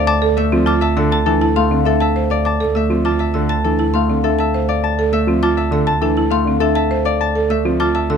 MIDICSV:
0, 0, Header, 1, 6, 480
1, 0, Start_track
1, 0, Key_signature, -1, "minor"
1, 0, Tempo, 594059
1, 60, Time_signature, 4, 2, 24, 8
1, 6604, End_track
2, 0, Start_track
2, 0, Title_t, "Xylophone"
2, 0, Program_c, 0, 13
2, 0, Note_on_c, 0, 77, 70
2, 59, Note_on_c, 0, 86, 87
2, 97, Note_off_c, 0, 77, 0
2, 215, Note_off_c, 0, 86, 0
2, 305, Note_on_c, 0, 88, 69
2, 457, Note_off_c, 0, 88, 0
2, 543, Note_on_c, 0, 86, 79
2, 664, Note_on_c, 0, 81, 61
2, 697, Note_off_c, 0, 86, 0
2, 784, Note_on_c, 0, 88, 61
2, 817, Note_off_c, 0, 81, 0
2, 908, Note_on_c, 0, 81, 80
2, 937, Note_off_c, 0, 88, 0
2, 1058, Note_off_c, 0, 81, 0
2, 1143, Note_on_c, 0, 81, 60
2, 1263, Note_on_c, 0, 84, 70
2, 1297, Note_off_c, 0, 81, 0
2, 1417, Note_off_c, 0, 84, 0
2, 1499, Note_on_c, 0, 76, 56
2, 1620, Note_on_c, 0, 81, 73
2, 1655, Note_off_c, 0, 76, 0
2, 1776, Note_off_c, 0, 81, 0
2, 1861, Note_on_c, 0, 77, 53
2, 1981, Note_on_c, 0, 86, 66
2, 2016, Note_off_c, 0, 77, 0
2, 2136, Note_off_c, 0, 86, 0
2, 2223, Note_on_c, 0, 88, 54
2, 2377, Note_off_c, 0, 88, 0
2, 2464, Note_on_c, 0, 86, 60
2, 2580, Note_on_c, 0, 81, 51
2, 2617, Note_off_c, 0, 86, 0
2, 2698, Note_on_c, 0, 88, 49
2, 2736, Note_off_c, 0, 81, 0
2, 2823, Note_on_c, 0, 81, 69
2, 2855, Note_off_c, 0, 88, 0
2, 2977, Note_off_c, 0, 81, 0
2, 3061, Note_on_c, 0, 81, 47
2, 3181, Note_on_c, 0, 84, 61
2, 3216, Note_off_c, 0, 81, 0
2, 3336, Note_off_c, 0, 84, 0
2, 3424, Note_on_c, 0, 76, 53
2, 3544, Note_on_c, 0, 81, 65
2, 3577, Note_off_c, 0, 76, 0
2, 3697, Note_off_c, 0, 81, 0
2, 3787, Note_on_c, 0, 77, 51
2, 3938, Note_off_c, 0, 77, 0
2, 4144, Note_on_c, 0, 88, 58
2, 4297, Note_off_c, 0, 88, 0
2, 4385, Note_on_c, 0, 86, 70
2, 4508, Note_on_c, 0, 81, 57
2, 4537, Note_off_c, 0, 86, 0
2, 4622, Note_on_c, 0, 88, 53
2, 4658, Note_off_c, 0, 81, 0
2, 4742, Note_on_c, 0, 81, 70
2, 4776, Note_off_c, 0, 88, 0
2, 4896, Note_off_c, 0, 81, 0
2, 4984, Note_on_c, 0, 81, 52
2, 5103, Note_on_c, 0, 84, 70
2, 5137, Note_off_c, 0, 81, 0
2, 5257, Note_off_c, 0, 84, 0
2, 5343, Note_on_c, 0, 76, 56
2, 5457, Note_on_c, 0, 81, 71
2, 5497, Note_off_c, 0, 76, 0
2, 5615, Note_off_c, 0, 81, 0
2, 5699, Note_on_c, 0, 77, 57
2, 5855, Note_off_c, 0, 77, 0
2, 6062, Note_on_c, 0, 88, 59
2, 6216, Note_off_c, 0, 88, 0
2, 6302, Note_on_c, 0, 86, 72
2, 6422, Note_on_c, 0, 81, 60
2, 6456, Note_off_c, 0, 86, 0
2, 6544, Note_on_c, 0, 88, 55
2, 6576, Note_off_c, 0, 81, 0
2, 6604, Note_off_c, 0, 88, 0
2, 6604, End_track
3, 0, Start_track
3, 0, Title_t, "Harp"
3, 0, Program_c, 1, 46
3, 0, Note_on_c, 1, 69, 85
3, 0, Note_on_c, 1, 74, 88
3, 0, Note_on_c, 1, 76, 69
3, 0, Note_on_c, 1, 77, 70
3, 57, Note_on_c, 1, 81, 83
3, 286, Note_off_c, 1, 76, 0
3, 296, Note_on_c, 1, 76, 71
3, 523, Note_off_c, 1, 81, 0
3, 532, Note_on_c, 1, 81, 65
3, 646, Note_off_c, 1, 76, 0
3, 656, Note_on_c, 1, 76, 62
3, 891, Note_off_c, 1, 81, 0
3, 901, Note_on_c, 1, 81, 57
3, 1007, Note_off_c, 1, 69, 0
3, 1017, Note_on_c, 1, 69, 63
3, 1250, Note_off_c, 1, 77, 0
3, 1260, Note_on_c, 1, 77, 60
3, 1495, Note_off_c, 1, 69, 0
3, 1504, Note_on_c, 1, 69, 72
3, 1617, Note_off_c, 1, 76, 0
3, 1627, Note_on_c, 1, 76, 54
3, 1856, Note_off_c, 1, 74, 0
3, 1866, Note_on_c, 1, 74, 65
3, 1979, Note_off_c, 1, 81, 0
3, 1988, Note_on_c, 1, 81, 63
3, 2223, Note_off_c, 1, 76, 0
3, 2233, Note_on_c, 1, 76, 55
3, 2459, Note_off_c, 1, 81, 0
3, 2469, Note_on_c, 1, 81, 51
3, 2574, Note_off_c, 1, 76, 0
3, 2584, Note_on_c, 1, 76, 50
3, 2812, Note_off_c, 1, 81, 0
3, 2822, Note_on_c, 1, 81, 48
3, 2935, Note_off_c, 1, 69, 0
3, 2944, Note_on_c, 1, 69, 53
3, 3179, Note_off_c, 1, 77, 0
3, 3189, Note_on_c, 1, 77, 50
3, 3415, Note_off_c, 1, 69, 0
3, 3425, Note_on_c, 1, 69, 63
3, 3544, Note_off_c, 1, 76, 0
3, 3553, Note_on_c, 1, 76, 52
3, 3777, Note_off_c, 1, 74, 0
3, 3787, Note_on_c, 1, 74, 64
3, 3898, Note_off_c, 1, 81, 0
3, 3908, Note_on_c, 1, 81, 66
3, 4136, Note_off_c, 1, 76, 0
3, 4146, Note_on_c, 1, 76, 63
3, 4376, Note_off_c, 1, 81, 0
3, 4386, Note_on_c, 1, 81, 57
3, 4492, Note_off_c, 1, 76, 0
3, 4502, Note_on_c, 1, 76, 54
3, 4732, Note_off_c, 1, 81, 0
3, 4742, Note_on_c, 1, 81, 58
3, 4850, Note_off_c, 1, 69, 0
3, 4860, Note_on_c, 1, 69, 58
3, 5083, Note_off_c, 1, 77, 0
3, 5093, Note_on_c, 1, 77, 56
3, 5325, Note_off_c, 1, 69, 0
3, 5335, Note_on_c, 1, 69, 74
3, 5451, Note_off_c, 1, 76, 0
3, 5460, Note_on_c, 1, 76, 58
3, 5690, Note_off_c, 1, 74, 0
3, 5700, Note_on_c, 1, 74, 74
3, 5813, Note_off_c, 1, 81, 0
3, 5823, Note_on_c, 1, 81, 70
3, 6055, Note_off_c, 1, 76, 0
3, 6065, Note_on_c, 1, 76, 59
3, 6292, Note_off_c, 1, 81, 0
3, 6302, Note_on_c, 1, 81, 59
3, 6412, Note_off_c, 1, 76, 0
3, 6422, Note_on_c, 1, 76, 53
3, 6604, Note_off_c, 1, 69, 0
3, 6604, Note_off_c, 1, 74, 0
3, 6604, Note_off_c, 1, 76, 0
3, 6604, Note_off_c, 1, 77, 0
3, 6604, Note_off_c, 1, 81, 0
3, 6604, End_track
4, 0, Start_track
4, 0, Title_t, "Marimba"
4, 0, Program_c, 2, 12
4, 177, Note_on_c, 2, 69, 81
4, 335, Note_off_c, 2, 69, 0
4, 423, Note_on_c, 2, 60, 68
4, 534, Note_on_c, 2, 65, 78
4, 577, Note_off_c, 2, 60, 0
4, 694, Note_off_c, 2, 65, 0
4, 782, Note_on_c, 2, 69, 62
4, 936, Note_off_c, 2, 69, 0
4, 1023, Note_on_c, 2, 62, 63
4, 1143, Note_on_c, 2, 64, 62
4, 1177, Note_off_c, 2, 62, 0
4, 1297, Note_off_c, 2, 64, 0
4, 1383, Note_on_c, 2, 60, 55
4, 1499, Note_on_c, 2, 62, 55
4, 1537, Note_off_c, 2, 60, 0
4, 1655, Note_off_c, 2, 62, 0
4, 1745, Note_on_c, 2, 72, 55
4, 1897, Note_off_c, 2, 72, 0
4, 2105, Note_on_c, 2, 69, 62
4, 2257, Note_off_c, 2, 69, 0
4, 2346, Note_on_c, 2, 60, 51
4, 2466, Note_on_c, 2, 65, 64
4, 2498, Note_off_c, 2, 60, 0
4, 2618, Note_off_c, 2, 65, 0
4, 2707, Note_on_c, 2, 69, 50
4, 2858, Note_off_c, 2, 69, 0
4, 2945, Note_on_c, 2, 62, 53
4, 3066, Note_on_c, 2, 64, 55
4, 3098, Note_off_c, 2, 62, 0
4, 3218, Note_off_c, 2, 64, 0
4, 3309, Note_on_c, 2, 60, 50
4, 3430, Note_on_c, 2, 62, 47
4, 3459, Note_off_c, 2, 60, 0
4, 3579, Note_off_c, 2, 62, 0
4, 3671, Note_on_c, 2, 72, 53
4, 3819, Note_off_c, 2, 72, 0
4, 4030, Note_on_c, 2, 69, 72
4, 4179, Note_off_c, 2, 69, 0
4, 4267, Note_on_c, 2, 60, 59
4, 4388, Note_on_c, 2, 65, 68
4, 4418, Note_off_c, 2, 60, 0
4, 4539, Note_off_c, 2, 65, 0
4, 4629, Note_on_c, 2, 69, 52
4, 4779, Note_off_c, 2, 69, 0
4, 4869, Note_on_c, 2, 62, 62
4, 4989, Note_on_c, 2, 64, 60
4, 5019, Note_off_c, 2, 62, 0
4, 5139, Note_off_c, 2, 64, 0
4, 5232, Note_on_c, 2, 60, 56
4, 5349, Note_on_c, 2, 62, 56
4, 5380, Note_off_c, 2, 60, 0
4, 5499, Note_off_c, 2, 62, 0
4, 5582, Note_on_c, 2, 72, 59
4, 5736, Note_off_c, 2, 72, 0
4, 5943, Note_on_c, 2, 69, 70
4, 6097, Note_off_c, 2, 69, 0
4, 6185, Note_on_c, 2, 60, 59
4, 6305, Note_on_c, 2, 65, 71
4, 6337, Note_off_c, 2, 60, 0
4, 6457, Note_off_c, 2, 65, 0
4, 6547, Note_on_c, 2, 69, 55
4, 6604, Note_off_c, 2, 69, 0
4, 6604, End_track
5, 0, Start_track
5, 0, Title_t, "Grand piano"
5, 0, Program_c, 3, 0
5, 302, Note_on_c, 3, 57, 65
5, 425, Note_on_c, 3, 53, 82
5, 456, Note_off_c, 3, 57, 0
5, 577, Note_off_c, 3, 53, 0
5, 781, Note_on_c, 3, 50, 82
5, 936, Note_off_c, 3, 50, 0
5, 1022, Note_on_c, 3, 52, 65
5, 1176, Note_off_c, 3, 52, 0
5, 1267, Note_on_c, 3, 57, 59
5, 1381, Note_on_c, 3, 50, 57
5, 1418, Note_off_c, 3, 57, 0
5, 1536, Note_off_c, 3, 50, 0
5, 2223, Note_on_c, 3, 57, 49
5, 2341, Note_on_c, 3, 53, 69
5, 2377, Note_off_c, 3, 57, 0
5, 2496, Note_off_c, 3, 53, 0
5, 2707, Note_on_c, 3, 50, 66
5, 2858, Note_off_c, 3, 50, 0
5, 2947, Note_on_c, 3, 52, 51
5, 3098, Note_off_c, 3, 52, 0
5, 3185, Note_on_c, 3, 57, 53
5, 3302, Note_on_c, 3, 50, 50
5, 3338, Note_off_c, 3, 57, 0
5, 3456, Note_off_c, 3, 50, 0
5, 4140, Note_on_c, 3, 57, 58
5, 4259, Note_on_c, 3, 53, 72
5, 4295, Note_off_c, 3, 57, 0
5, 4415, Note_off_c, 3, 53, 0
5, 4615, Note_on_c, 3, 50, 72
5, 4774, Note_off_c, 3, 50, 0
5, 4861, Note_on_c, 3, 52, 61
5, 5016, Note_off_c, 3, 52, 0
5, 5097, Note_on_c, 3, 57, 63
5, 5213, Note_on_c, 3, 50, 55
5, 5255, Note_off_c, 3, 57, 0
5, 5373, Note_off_c, 3, 50, 0
5, 6058, Note_on_c, 3, 57, 54
5, 6181, Note_on_c, 3, 53, 72
5, 6215, Note_off_c, 3, 57, 0
5, 6336, Note_off_c, 3, 53, 0
5, 6544, Note_on_c, 3, 50, 71
5, 6604, Note_off_c, 3, 50, 0
5, 6604, End_track
6, 0, Start_track
6, 0, Title_t, "Double bass"
6, 0, Program_c, 4, 43
6, 0, Note_on_c, 4, 38, 64
6, 6604, Note_off_c, 4, 38, 0
6, 6604, End_track
0, 0, End_of_file